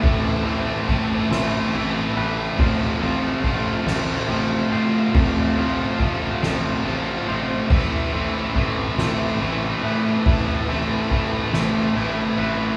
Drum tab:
CC |------|------|------|x-----|
RD |xxxxxx|xxxxxx|xxxxxx|-xxxxx|
SD |---o--|---o--|---o--|---o--|
BD |o-o---|o-o---|o-o---|o-o---|

CC |------|
RD |xxxxxx|
SD |---o--|
BD |o-o---|